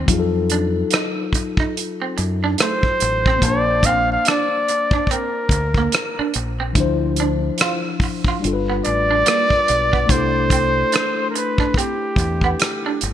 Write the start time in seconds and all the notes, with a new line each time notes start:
0.06 F2 F#3 D#4, kick, closed hi-hat
0.10 F4 G#4
0.19 A4
0.50 D4, closed hi-hat
0.91 D#4, cross-stick, closed hi-hat
1.33 muted clean electric guitar stroke, kick, closed hi-hat
1.57 D#4, kick
1.77 closed hi-hat
2.02 C4
2.18 F#2, muted clean electric guitar stroke, closed hi-hat
2.44 D4
2.58 A3, cross-stick, closed hi-hat
2.62 C5
2.83 kick
3.00 A1, muted clean electric guitar stroke, closed hi-hat
3.26 C4, kick
3.38 A#3 C4, kick
3.42 A#1 C5 D5 A5, closed hi-hat
3.47 D4
3.83 C4 F5, kick, closed hi-hat
4.12 F5
4.25 D4 D5, cross-stick, closed hi-hat
4.68 muted clean electric guitar stroke, closed hi-hat
4.91 D4, kick
5.07 kick, closed hi-hat
5.11 C4 A#4
5.49 D2, muted clean electric guitar stroke, kick, closed hi-hat
5.74 A#3, kick
5.92 cross-stick, closed hi-hat
6.19 D4, muted fingered electric bass stroke
6.34 A#1, muted clean electric guitar stroke, closed hi-hat
6.60 C4
6.73 D2 E3 D4, kick, closed hi-hat
6.77 F3 E4 C5
7.16 D4, closed hi-hat
7.58 F4, cross-stick, closed hi-hat
8.00 muted clean electric guitar stroke, kick, open hi-hat
8.24 F4, kick
8.40 G3 D4
8.44 G1 F4 A4, closed hi-hat
8.53 B4
8.70 B3
8.85 A1 D5, muted clean electric guitar stroke, closed hi-hat
9.11 D4
9.26 A#3, cross-stick, closed hi-hat
9.50 kick
9.68 B1, muted clean electric guitar stroke, closed hi-hat
9.93 B3, kick
10.06 C2 A3 D4, kick, closed hi-hat
10.11 E4 A4 C5
10.50 C4, kick, closed hi-hat
10.92 D4, cross-stick, closed hi-hat
11.30 A#4
11.35 B4, muted clean electric guitar stroke, closed hi-hat
11.58 D4, kick
11.74 C4 G4, kick
11.78 closed hi-hat
12.16 E2, muted clean electric guitar stroke, kick, closed hi-hat
12.41 B3, kick
12.60 cross-stick, closed hi-hat
12.86 D4
13.01 G1, muted clean electric guitar stroke, closed hi-hat